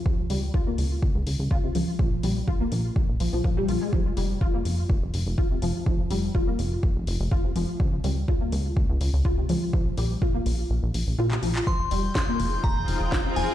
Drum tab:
HH |--o---o---o---o-|--o---o---o---o-|--o---o---o---o-|--o---o---o---o-|
CP |----------------|----------------|----------------|----------------|
SD |----------------|----------------|----------------|----------------|
BD |o---o---o---o---|o---o---o---o---|o---o---o---o---|o---o---o---o---|

HH |--o---o---o---o-|--o---o---o---o-|--o---o---o---o-|
CP |----------------|-------------x-x|----------------|
SD |----------------|----------------|----o-------o---|
BD |o---o---o---o---|o---o-----------|o---o---o---o---|